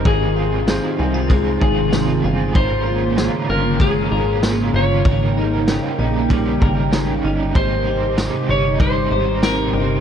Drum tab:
RD |x-x-x-x-|x-x-x-x-|x-x-x-x-|x-x-x-x-|
TB |--x---x-|--x---x-|--x---x-|--x---x-|
SD |--o---o-|--o---o-|--o---o-|--o---o-|
BD |o---oo--|o---o---|o---oo--|o---o---|